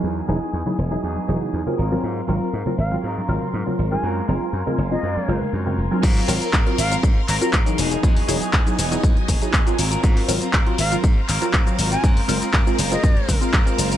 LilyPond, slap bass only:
\new Staff \with { instrumentName = "Slap bass" } { \clef bass \time 4/4 \key aes \mixolydian \tempo 4 = 120 e,8 e,,8 e,8 e,,8 e,8 e,,8 e,8 aes,,8 | aes,8 aes,,8 aes,8 aes,,8 aes,8 aes,,8 aes,8 aes,,8 | ges,8 ges,,8 ges,8 ges,,8 ges,8 ges,,8 ges,8 ges,,8 | aes,8 aes,,8 aes,8 aes,,8 aes,8 aes,,8 aes,8 e,,8 |
e,8 e,,8 e,8 e,,8 e,8 e,,8 e,8 aes,,8 | aes,8 aes,,8 aes,8 aes,,8 aes,8 aes,,8 aes,8 aes,,8 | ges,8 ges,,8 ges,8 ges,,8 ges,8 ges,,8 ges,8 ges,,8 | }